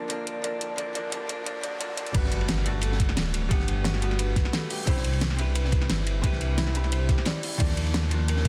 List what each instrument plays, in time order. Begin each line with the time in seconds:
Already playing: felt piano A#4 D5, riser
0.08 hollow-body jazz guitar D3 F3 A#3, felt piano D5, closed hi-hat
0.12 hollow-body jazz guitar D4
0.27 felt piano A#4, closed hi-hat
0.42 hollow-body jazz guitar D3 F3 A#3, felt piano D5, closed hi-hat
0.46 hollow-body jazz guitar D4
0.61 felt piano A#4, closed hi-hat
0.76 hollow-body jazz guitar D3 F3 A#3, felt piano D5, closed hi-hat
0.80 hollow-body jazz guitar D4
0.93 hollow-body jazz guitar D3 F3 A#3, felt piano D5, closed hi-hat
0.97 hollow-body jazz guitar D4
1.10 hollow-body jazz guitar D3 F3 G3 A#3, felt piano D5, closed hi-hat
1.14 hollow-body jazz guitar D4
1.27 hollow-body jazz guitar D3 F3 A#3, felt piano D5, closed hi-hat
1.31 hollow-body jazz guitar D4
1.44 hollow-body jazz guitar D3 F3 A#3, felt piano D5, closed hi-hat
1.48 hollow-body jazz guitar D4
1.61 hollow-body jazz guitar D3 F3 A#3, felt piano D5, closed hi-hat
1.65 hollow-body jazz guitar D4
1.78 hollow-body jazz guitar D3 F3 A#3, felt piano D5, closed hi-hat
1.82 hollow-body jazz guitar D4
1.95 hollow-body jazz guitar D3 F3 A#3, felt piano D5, closed hi-hat
2.00 hollow-body jazz guitar D4
2.06 closed hi-hat
2.13 detuned saw bass G1, hollow-body jazz guitar G3 A3 D4, felt piano B4, kick, closed hi-hat, crash, ride, impact
2.17 hollow-body jazz guitar F#4
2.24 snare
2.32 closed hi-hat, ride
2.41 ride
2.48 snare, closed hi-hat, ride
2.58 snare
2.64 hollow-body jazz guitar G3 A3 D4, closed hi-hat, ride
2.68 hollow-body jazz guitar F#4
2.81 felt piano A4, closed hi-hat, ride
2.92 snare
3.00 kick, closed hi-hat, ride
3.09 snare
3.17 detuned saw bass D1, snare, closed hi-hat, ride
3.34 closed hi-hat, ride
3.49 detuned saw bass G1, hollow-body jazz guitar G3 A3 B3 D4, felt piano G4, kick, closed hi-hat, ride
3.53 hollow-body jazz guitar F#5
3.60 snare
3.68 closed hi-hat, ride
3.84 felt piano F#4, snare, closed hi-hat, ride
3.94 snare
4.00 hollow-body jazz guitar G3 A3 B3 D4, closed hi-hat, ride
4.04 hollow-body jazz guitar F#4
4.11 snare, ride
4.19 felt piano B4, closed hi-hat, ride
4.36 kick, snare, closed hi-hat, ride
4.45 snare
4.53 felt piano A4, snare, closed hi-hat, ride
4.70 felt piano G4, closed hi-hat, open hi-hat
4.85 detuned saw bass C2, hollow-body jazz guitar C4 D4 E4 G4, felt piano C5, kick, closed hi-hat, ride
4.90 hollow-body jazz guitar B5
4.96 snare
5.04 closed hi-hat, ride
5.13 ride
5.21 snare, closed hi-hat, ride
5.30 snare
5.37 hollow-body jazz guitar C4 D4 E4 G4, closed hi-hat, ride
5.41 hollow-body jazz guitar B4
5.55 felt piano B4, closed hi-hat, ride
5.65 snare
5.72 kick, closed hi-hat, ride
5.82 snare
5.90 detuned saw bass G1, snare, closed hi-hat, ride
6.07 closed hi-hat, ride
6.22 detuned saw bass C2, hollow-body jazz guitar C4 D4 E4 G4, felt piano G4, kick, closed hi-hat, ride
6.26 hollow-body jazz guitar B4
6.33 snare
6.41 closed hi-hat, ride
6.58 felt piano E4, snare, closed hi-hat, ride
6.67 snare
6.73 hollow-body jazz guitar C4 D4 E4 G4, closed hi-hat, ride
6.77 hollow-body jazz guitar B5
6.84 snare, ride
6.92 felt piano C5, closed hi-hat, ride
7.09 felt piano G4, kick, snare, closed hi-hat, ride
7.18 snare
7.25 felt piano D5, snare, closed hi-hat, ride
7.43 felt piano E4, closed hi-hat, open hi-hat
7.58 detuned saw bass D#2, hollow-body jazz guitar D#3 F3 A#3, felt piano D5, kick, closed hi-hat, ride
7.62 hollow-body jazz guitar D4
7.69 snare
7.77 closed hi-hat, ride
7.87 ride
7.94 snare, closed hi-hat, ride
8.03 snare
8.09 hollow-body jazz guitar D#3 F3 A#3, closed hi-hat, ride
8.13 hollow-body jazz guitar D4
8.28 felt piano A#4, closed hi-hat, ride
8.36 snare
8.45 ride